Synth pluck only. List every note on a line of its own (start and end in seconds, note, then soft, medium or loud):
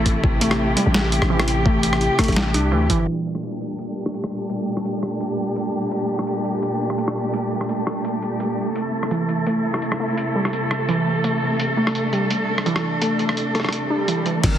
0.41 0.75 A3 medium
0.77 0.94 G3 medium
1.30 1.64 E3 loud
1.66 1.82 A3 medium
2.19 2.53 A3 medium
2.54 2.71 D4 medium
2.72 2.88 E3 medium
2.90 3.07 E3 loud
9.11 9.45 E3 loud
9.47 9.64 A3 medium
10.00 10.34 A3 medium
10.35 10.52 G3 medium
10.89 11.23 E3 loud
11.24 11.41 A3 medium
11.77 12.11 A3 medium
12.13 12.30 G3 medium
12.66 13.00 E3 loud
13.02 13.19 A3 medium
13.55 13.89 A3 medium
13.90 14.07 D4 medium
14.08 14.24 E3 medium
14.26 14.43 E3 loud